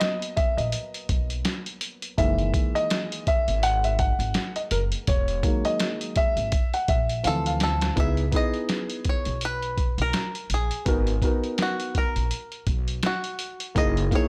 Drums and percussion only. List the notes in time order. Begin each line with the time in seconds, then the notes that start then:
0.01 snare, closed hi-hat
0.22 closed hi-hat
0.37 kick, closed hi-hat
0.58 closed hi-hat
0.72 closed hi-hat
0.94 closed hi-hat
1.09 kick, closed hi-hat
1.30 closed hi-hat
1.45 snare, closed hi-hat
1.66 closed hi-hat
1.81 closed hi-hat
2.02 closed hi-hat
2.18 kick, closed hi-hat
2.39 closed hi-hat
2.54 kick, closed hi-hat
2.76 closed hi-hat
2.90 snare, closed hi-hat
3.12 closed hi-hat
3.27 kick, closed hi-hat
3.48 closed hi-hat
3.63 closed hi-hat
3.84 closed hi-hat
3.99 kick, closed hi-hat
4.20 closed hi-hat
4.34 snare, closed hi-hat
4.56 closed hi-hat
4.71 closed hi-hat
4.92 closed hi-hat
5.07 kick, closed hi-hat
5.28 closed hi-hat
5.43 kick, closed hi-hat
5.65 closed hi-hat
5.80 snare, closed hi-hat
6.01 closed hi-hat
6.16 kick, closed hi-hat
6.37 closed hi-hat
6.52 kick, closed hi-hat
6.74 closed hi-hat
6.88 kick, closed hi-hat
7.09 closed hi-hat
7.24 closed hi-hat
7.46 closed hi-hat
7.60 snare, closed hi-hat
7.81 snare, closed hi-hat
7.97 kick, closed hi-hat
8.17 closed hi-hat
8.32 kick, closed hi-hat
8.54 closed hi-hat
8.69 snare, closed hi-hat
8.90 closed hi-hat
9.05 kick, closed hi-hat
9.25 closed hi-hat
9.41 closed hi-hat
9.63 closed hi-hat
9.78 kick, closed hi-hat
9.98 closed hi-hat
10.13 snare, closed hi-hat
10.35 closed hi-hat
10.50 closed hi-hat
10.71 closed hi-hat
10.86 kick, closed hi-hat
11.07 closed hi-hat
11.22 kick, closed hi-hat
11.44 closed hi-hat
11.58 snare, closed hi-hat
11.80 closed hi-hat
11.95 kick, closed hi-hat
12.16 closed hi-hat
12.31 closed hi-hat
12.52 closed hi-hat
12.67 kick, closed hi-hat
12.88 closed hi-hat
13.03 snare, closed hi-hat
13.24 closed hi-hat
13.39 closed hi-hat
13.60 closed hi-hat
13.76 kick, closed hi-hat
13.97 closed hi-hat
14.11 kick, closed hi-hat